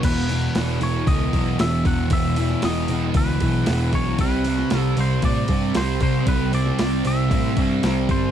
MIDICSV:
0, 0, Header, 1, 5, 480
1, 0, Start_track
1, 0, Tempo, 519931
1, 31, Time_signature, 4, 2, 24, 8
1, 7674, End_track
2, 0, Start_track
2, 0, Title_t, "Clean electric guitar"
2, 0, Program_c, 0, 27
2, 42, Note_on_c, 0, 71, 81
2, 766, Note_off_c, 0, 71, 0
2, 770, Note_on_c, 0, 73, 82
2, 993, Note_on_c, 0, 75, 88
2, 1008, Note_off_c, 0, 73, 0
2, 1480, Note_off_c, 0, 75, 0
2, 1483, Note_on_c, 0, 76, 93
2, 1721, Note_off_c, 0, 76, 0
2, 1725, Note_on_c, 0, 78, 83
2, 1943, Note_off_c, 0, 78, 0
2, 1966, Note_on_c, 0, 76, 99
2, 2443, Note_off_c, 0, 76, 0
2, 2446, Note_on_c, 0, 75, 92
2, 2921, Note_off_c, 0, 75, 0
2, 2925, Note_on_c, 0, 71, 82
2, 3644, Note_off_c, 0, 71, 0
2, 3647, Note_on_c, 0, 73, 81
2, 3881, Note_off_c, 0, 73, 0
2, 3884, Note_on_c, 0, 71, 89
2, 4420, Note_off_c, 0, 71, 0
2, 4420, Note_on_c, 0, 69, 89
2, 4617, Note_off_c, 0, 69, 0
2, 4621, Note_on_c, 0, 72, 90
2, 4842, Note_off_c, 0, 72, 0
2, 4846, Note_on_c, 0, 74, 84
2, 5323, Note_off_c, 0, 74, 0
2, 5327, Note_on_c, 0, 72, 91
2, 5552, Note_off_c, 0, 72, 0
2, 5563, Note_on_c, 0, 72, 85
2, 5798, Note_off_c, 0, 72, 0
2, 5801, Note_on_c, 0, 71, 94
2, 6040, Note_off_c, 0, 71, 0
2, 6043, Note_on_c, 0, 74, 100
2, 6525, Note_off_c, 0, 74, 0
2, 6528, Note_on_c, 0, 76, 94
2, 7488, Note_on_c, 0, 72, 90
2, 7510, Note_off_c, 0, 76, 0
2, 7674, Note_off_c, 0, 72, 0
2, 7674, End_track
3, 0, Start_track
3, 0, Title_t, "Distorted electric guitar"
3, 0, Program_c, 1, 30
3, 31, Note_on_c, 1, 40, 107
3, 42, Note_on_c, 1, 47, 105
3, 51, Note_on_c, 1, 52, 104
3, 263, Note_off_c, 1, 52, 0
3, 267, Note_on_c, 1, 52, 72
3, 280, Note_off_c, 1, 47, 0
3, 291, Note_on_c, 1, 47, 60
3, 511, Note_off_c, 1, 40, 0
3, 515, Note_on_c, 1, 40, 69
3, 517, Note_off_c, 1, 47, 0
3, 528, Note_on_c, 1, 47, 73
3, 531, Note_off_c, 1, 52, 0
3, 534, Note_on_c, 1, 52, 76
3, 748, Note_off_c, 1, 52, 0
3, 752, Note_on_c, 1, 52, 69
3, 762, Note_off_c, 1, 47, 0
3, 773, Note_on_c, 1, 47, 59
3, 993, Note_off_c, 1, 40, 0
3, 996, Note_on_c, 1, 40, 102
3, 997, Note_off_c, 1, 47, 0
3, 1008, Note_on_c, 1, 47, 102
3, 1013, Note_off_c, 1, 52, 0
3, 1017, Note_on_c, 1, 52, 105
3, 1229, Note_off_c, 1, 52, 0
3, 1232, Note_on_c, 1, 52, 71
3, 1243, Note_off_c, 1, 47, 0
3, 1254, Note_on_c, 1, 47, 64
3, 1455, Note_off_c, 1, 40, 0
3, 1463, Note_off_c, 1, 47, 0
3, 1466, Note_on_c, 1, 40, 79
3, 1474, Note_on_c, 1, 47, 85
3, 1484, Note_off_c, 1, 52, 0
3, 1488, Note_on_c, 1, 52, 80
3, 1707, Note_off_c, 1, 52, 0
3, 1711, Note_on_c, 1, 52, 83
3, 1717, Note_off_c, 1, 47, 0
3, 1728, Note_on_c, 1, 47, 61
3, 1944, Note_off_c, 1, 40, 0
3, 1952, Note_off_c, 1, 47, 0
3, 1955, Note_on_c, 1, 40, 93
3, 1963, Note_on_c, 1, 47, 99
3, 1973, Note_off_c, 1, 52, 0
3, 1976, Note_on_c, 1, 52, 106
3, 2186, Note_off_c, 1, 52, 0
3, 2190, Note_on_c, 1, 52, 77
3, 2194, Note_off_c, 1, 47, 0
3, 2205, Note_on_c, 1, 47, 68
3, 2422, Note_off_c, 1, 40, 0
3, 2432, Note_off_c, 1, 47, 0
3, 2433, Note_on_c, 1, 40, 74
3, 2443, Note_on_c, 1, 47, 79
3, 2449, Note_off_c, 1, 52, 0
3, 2453, Note_on_c, 1, 52, 80
3, 2672, Note_off_c, 1, 52, 0
3, 2675, Note_on_c, 1, 52, 76
3, 2679, Note_off_c, 1, 47, 0
3, 2690, Note_on_c, 1, 47, 63
3, 2902, Note_off_c, 1, 40, 0
3, 2913, Note_on_c, 1, 40, 102
3, 2914, Note_off_c, 1, 47, 0
3, 2925, Note_on_c, 1, 47, 98
3, 2930, Note_off_c, 1, 52, 0
3, 2934, Note_on_c, 1, 52, 100
3, 3148, Note_off_c, 1, 52, 0
3, 3152, Note_on_c, 1, 52, 73
3, 3159, Note_off_c, 1, 47, 0
3, 3170, Note_on_c, 1, 47, 63
3, 3386, Note_off_c, 1, 40, 0
3, 3395, Note_off_c, 1, 47, 0
3, 3397, Note_on_c, 1, 40, 78
3, 3406, Note_on_c, 1, 47, 77
3, 3414, Note_off_c, 1, 52, 0
3, 3417, Note_on_c, 1, 52, 88
3, 3622, Note_off_c, 1, 52, 0
3, 3626, Note_on_c, 1, 52, 73
3, 3638, Note_off_c, 1, 47, 0
3, 3649, Note_on_c, 1, 47, 66
3, 3859, Note_off_c, 1, 40, 0
3, 3866, Note_off_c, 1, 47, 0
3, 3877, Note_on_c, 1, 48, 100
3, 3880, Note_off_c, 1, 52, 0
3, 3884, Note_on_c, 1, 55, 97
3, 3896, Note_on_c, 1, 60, 105
3, 4111, Note_off_c, 1, 60, 0
3, 4115, Note_on_c, 1, 60, 78
3, 4130, Note_off_c, 1, 55, 0
3, 4134, Note_on_c, 1, 55, 64
3, 4340, Note_off_c, 1, 48, 0
3, 4343, Note_on_c, 1, 48, 76
3, 4351, Note_off_c, 1, 55, 0
3, 4355, Note_on_c, 1, 55, 88
3, 4359, Note_off_c, 1, 60, 0
3, 4362, Note_on_c, 1, 60, 81
3, 4582, Note_off_c, 1, 60, 0
3, 4586, Note_on_c, 1, 60, 72
3, 4602, Note_off_c, 1, 55, 0
3, 4606, Note_on_c, 1, 55, 58
3, 4827, Note_off_c, 1, 48, 0
3, 4828, Note_off_c, 1, 55, 0
3, 4830, Note_on_c, 1, 48, 101
3, 4838, Note_off_c, 1, 60, 0
3, 4839, Note_on_c, 1, 55, 98
3, 4849, Note_on_c, 1, 60, 106
3, 5059, Note_off_c, 1, 60, 0
3, 5070, Note_on_c, 1, 60, 75
3, 5081, Note_off_c, 1, 55, 0
3, 5092, Note_on_c, 1, 55, 62
3, 5295, Note_off_c, 1, 48, 0
3, 5306, Note_on_c, 1, 48, 72
3, 5309, Note_off_c, 1, 55, 0
3, 5315, Note_off_c, 1, 60, 0
3, 5320, Note_on_c, 1, 55, 73
3, 5326, Note_on_c, 1, 60, 81
3, 5540, Note_off_c, 1, 60, 0
3, 5551, Note_on_c, 1, 60, 72
3, 5561, Note_off_c, 1, 55, 0
3, 5573, Note_on_c, 1, 55, 57
3, 5775, Note_off_c, 1, 48, 0
3, 5784, Note_off_c, 1, 55, 0
3, 5786, Note_on_c, 1, 48, 92
3, 5792, Note_off_c, 1, 60, 0
3, 5795, Note_on_c, 1, 55, 102
3, 5803, Note_on_c, 1, 60, 114
3, 6014, Note_off_c, 1, 60, 0
3, 6026, Note_on_c, 1, 60, 77
3, 6033, Note_off_c, 1, 55, 0
3, 6044, Note_on_c, 1, 55, 62
3, 6260, Note_off_c, 1, 48, 0
3, 6271, Note_on_c, 1, 48, 73
3, 6272, Note_off_c, 1, 55, 0
3, 6281, Note_off_c, 1, 60, 0
3, 6283, Note_on_c, 1, 55, 74
3, 6292, Note_on_c, 1, 60, 77
3, 6494, Note_off_c, 1, 60, 0
3, 6505, Note_on_c, 1, 60, 74
3, 6511, Note_off_c, 1, 55, 0
3, 6522, Note_on_c, 1, 55, 62
3, 6733, Note_off_c, 1, 48, 0
3, 6744, Note_on_c, 1, 48, 98
3, 6745, Note_off_c, 1, 55, 0
3, 6753, Note_off_c, 1, 60, 0
3, 6756, Note_on_c, 1, 55, 108
3, 6764, Note_on_c, 1, 60, 106
3, 6978, Note_off_c, 1, 60, 0
3, 6989, Note_on_c, 1, 60, 69
3, 6998, Note_off_c, 1, 55, 0
3, 7009, Note_on_c, 1, 55, 58
3, 7220, Note_off_c, 1, 48, 0
3, 7231, Note_off_c, 1, 55, 0
3, 7231, Note_on_c, 1, 48, 71
3, 7239, Note_off_c, 1, 60, 0
3, 7242, Note_on_c, 1, 55, 76
3, 7250, Note_on_c, 1, 60, 86
3, 7463, Note_off_c, 1, 60, 0
3, 7474, Note_on_c, 1, 60, 69
3, 7478, Note_off_c, 1, 55, 0
3, 7489, Note_on_c, 1, 55, 60
3, 7674, Note_off_c, 1, 48, 0
3, 7674, Note_off_c, 1, 55, 0
3, 7674, Note_off_c, 1, 60, 0
3, 7674, End_track
4, 0, Start_track
4, 0, Title_t, "Picked electric bass"
4, 0, Program_c, 2, 34
4, 33, Note_on_c, 2, 28, 105
4, 433, Note_off_c, 2, 28, 0
4, 519, Note_on_c, 2, 28, 90
4, 717, Note_off_c, 2, 28, 0
4, 756, Note_on_c, 2, 28, 88
4, 955, Note_off_c, 2, 28, 0
4, 989, Note_on_c, 2, 37, 96
4, 1191, Note_off_c, 2, 37, 0
4, 1232, Note_on_c, 2, 35, 95
4, 1433, Note_off_c, 2, 35, 0
4, 1480, Note_on_c, 2, 28, 102
4, 1677, Note_off_c, 2, 28, 0
4, 1712, Note_on_c, 2, 40, 98
4, 1912, Note_off_c, 2, 40, 0
4, 1948, Note_on_c, 2, 28, 103
4, 2350, Note_off_c, 2, 28, 0
4, 2435, Note_on_c, 2, 28, 92
4, 2634, Note_off_c, 2, 28, 0
4, 2670, Note_on_c, 2, 28, 96
4, 2871, Note_off_c, 2, 28, 0
4, 2905, Note_on_c, 2, 37, 97
4, 3108, Note_off_c, 2, 37, 0
4, 3148, Note_on_c, 2, 35, 93
4, 3349, Note_off_c, 2, 35, 0
4, 3401, Note_on_c, 2, 28, 102
4, 3597, Note_off_c, 2, 28, 0
4, 3630, Note_on_c, 2, 35, 95
4, 3831, Note_off_c, 2, 35, 0
4, 3869, Note_on_c, 2, 36, 97
4, 4270, Note_off_c, 2, 36, 0
4, 4359, Note_on_c, 2, 36, 97
4, 4556, Note_off_c, 2, 36, 0
4, 4593, Note_on_c, 2, 36, 99
4, 4792, Note_off_c, 2, 36, 0
4, 4828, Note_on_c, 2, 45, 96
4, 5029, Note_off_c, 2, 45, 0
4, 5067, Note_on_c, 2, 43, 95
4, 5269, Note_off_c, 2, 43, 0
4, 5318, Note_on_c, 2, 36, 97
4, 5515, Note_off_c, 2, 36, 0
4, 5549, Note_on_c, 2, 48, 88
4, 5750, Note_off_c, 2, 48, 0
4, 5788, Note_on_c, 2, 36, 100
4, 6189, Note_off_c, 2, 36, 0
4, 6277, Note_on_c, 2, 36, 91
4, 6475, Note_off_c, 2, 36, 0
4, 6514, Note_on_c, 2, 36, 88
4, 6713, Note_off_c, 2, 36, 0
4, 6749, Note_on_c, 2, 45, 96
4, 6950, Note_off_c, 2, 45, 0
4, 6991, Note_on_c, 2, 43, 90
4, 7192, Note_off_c, 2, 43, 0
4, 7237, Note_on_c, 2, 36, 97
4, 7436, Note_off_c, 2, 36, 0
4, 7468, Note_on_c, 2, 31, 92
4, 7670, Note_off_c, 2, 31, 0
4, 7674, End_track
5, 0, Start_track
5, 0, Title_t, "Drums"
5, 30, Note_on_c, 9, 36, 122
5, 31, Note_on_c, 9, 46, 89
5, 31, Note_on_c, 9, 49, 127
5, 122, Note_off_c, 9, 36, 0
5, 123, Note_off_c, 9, 46, 0
5, 123, Note_off_c, 9, 49, 0
5, 270, Note_on_c, 9, 46, 66
5, 362, Note_off_c, 9, 46, 0
5, 508, Note_on_c, 9, 46, 81
5, 513, Note_on_c, 9, 38, 112
5, 600, Note_off_c, 9, 46, 0
5, 605, Note_off_c, 9, 38, 0
5, 747, Note_on_c, 9, 46, 61
5, 839, Note_off_c, 9, 46, 0
5, 990, Note_on_c, 9, 36, 117
5, 992, Note_on_c, 9, 46, 85
5, 1082, Note_off_c, 9, 36, 0
5, 1084, Note_off_c, 9, 46, 0
5, 1230, Note_on_c, 9, 36, 84
5, 1235, Note_on_c, 9, 46, 64
5, 1323, Note_off_c, 9, 36, 0
5, 1328, Note_off_c, 9, 46, 0
5, 1470, Note_on_c, 9, 46, 92
5, 1476, Note_on_c, 9, 38, 125
5, 1563, Note_off_c, 9, 46, 0
5, 1568, Note_off_c, 9, 38, 0
5, 1709, Note_on_c, 9, 36, 93
5, 1712, Note_on_c, 9, 46, 69
5, 1802, Note_off_c, 9, 36, 0
5, 1804, Note_off_c, 9, 46, 0
5, 1940, Note_on_c, 9, 46, 100
5, 1947, Note_on_c, 9, 36, 124
5, 2032, Note_off_c, 9, 46, 0
5, 2039, Note_off_c, 9, 36, 0
5, 2182, Note_on_c, 9, 46, 69
5, 2274, Note_off_c, 9, 46, 0
5, 2310, Note_on_c, 9, 38, 33
5, 2403, Note_off_c, 9, 38, 0
5, 2421, Note_on_c, 9, 46, 91
5, 2427, Note_on_c, 9, 38, 109
5, 2513, Note_off_c, 9, 46, 0
5, 2519, Note_off_c, 9, 38, 0
5, 2660, Note_on_c, 9, 46, 64
5, 2753, Note_off_c, 9, 46, 0
5, 2900, Note_on_c, 9, 46, 88
5, 2905, Note_on_c, 9, 36, 110
5, 2993, Note_off_c, 9, 46, 0
5, 2998, Note_off_c, 9, 36, 0
5, 3143, Note_on_c, 9, 46, 68
5, 3146, Note_on_c, 9, 36, 81
5, 3235, Note_off_c, 9, 46, 0
5, 3238, Note_off_c, 9, 36, 0
5, 3382, Note_on_c, 9, 46, 95
5, 3387, Note_on_c, 9, 38, 121
5, 3474, Note_off_c, 9, 46, 0
5, 3480, Note_off_c, 9, 38, 0
5, 3626, Note_on_c, 9, 46, 65
5, 3627, Note_on_c, 9, 36, 88
5, 3718, Note_off_c, 9, 46, 0
5, 3719, Note_off_c, 9, 36, 0
5, 3864, Note_on_c, 9, 46, 85
5, 3866, Note_on_c, 9, 36, 112
5, 3956, Note_off_c, 9, 46, 0
5, 3958, Note_off_c, 9, 36, 0
5, 4104, Note_on_c, 9, 46, 63
5, 4196, Note_off_c, 9, 46, 0
5, 4230, Note_on_c, 9, 38, 33
5, 4322, Note_off_c, 9, 38, 0
5, 4342, Note_on_c, 9, 46, 82
5, 4348, Note_on_c, 9, 38, 114
5, 4435, Note_off_c, 9, 46, 0
5, 4440, Note_off_c, 9, 38, 0
5, 4586, Note_on_c, 9, 46, 59
5, 4678, Note_off_c, 9, 46, 0
5, 4822, Note_on_c, 9, 46, 83
5, 4825, Note_on_c, 9, 36, 117
5, 4914, Note_off_c, 9, 46, 0
5, 4918, Note_off_c, 9, 36, 0
5, 5058, Note_on_c, 9, 46, 62
5, 5065, Note_on_c, 9, 36, 77
5, 5150, Note_off_c, 9, 46, 0
5, 5157, Note_off_c, 9, 36, 0
5, 5304, Note_on_c, 9, 46, 92
5, 5310, Note_on_c, 9, 38, 125
5, 5397, Note_off_c, 9, 46, 0
5, 5402, Note_off_c, 9, 38, 0
5, 5544, Note_on_c, 9, 46, 66
5, 5546, Note_on_c, 9, 36, 88
5, 5636, Note_off_c, 9, 46, 0
5, 5639, Note_off_c, 9, 36, 0
5, 5785, Note_on_c, 9, 46, 96
5, 5787, Note_on_c, 9, 36, 115
5, 5878, Note_off_c, 9, 46, 0
5, 5879, Note_off_c, 9, 36, 0
5, 6028, Note_on_c, 9, 46, 67
5, 6120, Note_off_c, 9, 46, 0
5, 6152, Note_on_c, 9, 38, 35
5, 6244, Note_off_c, 9, 38, 0
5, 6265, Note_on_c, 9, 46, 92
5, 6271, Note_on_c, 9, 38, 115
5, 6358, Note_off_c, 9, 46, 0
5, 6363, Note_off_c, 9, 38, 0
5, 6505, Note_on_c, 9, 46, 69
5, 6598, Note_off_c, 9, 46, 0
5, 6749, Note_on_c, 9, 36, 114
5, 6752, Note_on_c, 9, 46, 86
5, 6841, Note_off_c, 9, 36, 0
5, 6844, Note_off_c, 9, 46, 0
5, 6985, Note_on_c, 9, 46, 66
5, 6988, Note_on_c, 9, 36, 76
5, 7078, Note_off_c, 9, 46, 0
5, 7080, Note_off_c, 9, 36, 0
5, 7230, Note_on_c, 9, 46, 90
5, 7236, Note_on_c, 9, 38, 123
5, 7323, Note_off_c, 9, 46, 0
5, 7328, Note_off_c, 9, 38, 0
5, 7469, Note_on_c, 9, 36, 92
5, 7469, Note_on_c, 9, 46, 68
5, 7561, Note_off_c, 9, 36, 0
5, 7561, Note_off_c, 9, 46, 0
5, 7674, End_track
0, 0, End_of_file